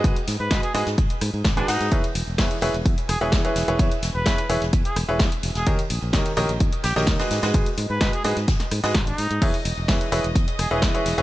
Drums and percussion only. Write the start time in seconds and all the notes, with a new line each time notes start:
0.04 kick, closed hi-hat, ride
0.16 closed hi-hat
0.28 snare, open hi-hat, ride
0.51 kick, snare, closed hi-hat, ride
0.63 closed hi-hat
0.74 open hi-hat, ride
0.86 snare, closed hi-hat
0.98 kick, closed hi-hat, ride
1.10 closed hi-hat
1.21 cross-stick, open hi-hat, ride
1.34 ride
1.45 kick, snare, closed hi-hat, open hi-hat
1.57 closed hi-hat
1.68 snare, open hi-hat
1.80 snare, closed hi-hat
1.91 kick, closed hi-hat, ride
2.04 closed hi-hat
2.15 open hi-hat, ride
2.27 ride
2.38 kick, snare, closed hi-hat, open hi-hat
2.51 closed hi-hat
2.61 cross-stick, open hi-hat, ride
2.74 closed hi-hat
2.85 kick, closed hi-hat, ride
2.98 closed hi-hat
3.09 cross-stick, open hi-hat, ride
3.21 ride
3.32 kick, snare, closed hi-hat, ride
3.45 closed hi-hat
3.56 snare, open hi-hat, ride
3.68 closed hi-hat
3.79 kick, closed hi-hat, ride
3.92 closed hi-hat
4.02 snare, open hi-hat, ride
4.25 kick, snare, closed hi-hat, ride
4.38 closed hi-hat
4.50 open hi-hat, ride
4.62 snare, closed hi-hat
4.73 kick, closed hi-hat, ride
4.85 closed hi-hat
4.96 cross-stick, open hi-hat, ride
5.09 ride
5.19 kick, snare, closed hi-hat, ride
5.32 closed hi-hat
5.43 open hi-hat, ride
5.55 snare, closed hi-hat
5.67 kick, closed hi-hat, ride
5.79 closed hi-hat
5.90 open hi-hat, ride
6.02 ride
6.13 kick, snare, closed hi-hat, open hi-hat
6.26 closed hi-hat
6.37 cross-stick, open hi-hat, ride
6.49 closed hi-hat
6.60 kick, closed hi-hat, ride
6.73 closed hi-hat
6.84 cross-stick, snare, open hi-hat
6.96 snare, open hi-hat
7.07 kick, snare, closed hi-hat
7.19 snare, closed hi-hat, open hi-hat
7.31 snare, open hi-hat
7.43 snare, closed hi-hat, open hi-hat
7.54 kick, closed hi-hat, ride
7.66 closed hi-hat
7.78 open hi-hat
8.01 kick, snare, closed hi-hat, ride
8.13 closed hi-hat
8.24 open hi-hat, ride
8.37 snare, closed hi-hat
8.48 kick, snare, closed hi-hat, open hi-hat
8.60 snare, closed hi-hat
8.71 cross-stick, open hi-hat, ride
8.83 snare, closed hi-hat, open hi-hat
8.95 kick, snare, closed hi-hat
9.07 closed hi-hat, ride
9.18 open hi-hat
9.30 closed hi-hat, ride
9.42 kick, closed hi-hat, crash, ride
9.54 closed hi-hat
9.65 open hi-hat, ride
9.77 ride
9.88 kick, snare, closed hi-hat, open hi-hat
10.01 closed hi-hat
10.12 cross-stick, open hi-hat, ride
10.24 closed hi-hat
10.35 kick, closed hi-hat, ride
10.48 closed hi-hat
10.59 cross-stick, open hi-hat, ride
10.71 ride
10.82 kick, snare, closed hi-hat, ride
10.95 closed hi-hat
11.06 snare, open hi-hat, ride
11.18 closed hi-hat